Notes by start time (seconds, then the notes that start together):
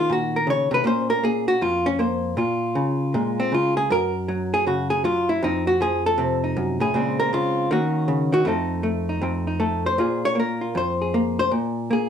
Already playing: D#3 D#4 F4
0.10 A#2 F#4
0.36 A#4
0.47 C#3 C#5
0.71 C3 B4
0.84 A#2 A#3 C#4 C5
1.10 A#4
1.23 A#3 G#4
1.48 F#4
1.61 F2 F4
1.86 C#4
1.99 A#3 C5
2.37 A#2 F4
2.75 C#3
3.14 A#2 G#3
3.40 C4
3.52 C#3 F4
3.77 G#4
3.90 F#2 A#4
4.28 F#3
4.54 G#4
4.67 C#3 F#4
4.90 G#4
5.04 F#3 F4
5.29 E4
5.43 F2 F3 C4 D#4
5.67 F#4
5.81 F3 G#4
6.06 A4
6.18 C3 C4
6.44 D#4
6.57 F#2
6.80 A2 G#4
6.94 A#2 C#3 G#3 C4
7.20 A#4
7.33 C#3 F4
7.71 D#3 A#3 C#4 F#4
8.08 C#3
8.32 D#3 F#4
8.45 F2 A3 C4 D#4 A4
8.83 A3
9.09 D#4
9.22 F2 C4
9.47 D#4
9.60 A3 A4
9.86 C5
9.98 A#2 A#3 F4 G#4
10.25 C#5
10.35 A#3
10.40 A#4
10.61 F4
10.75 F2 C5
11.02 G#4
11.14 A#3
11.39 C5
11.51 A#2
11.91 A#3 G#4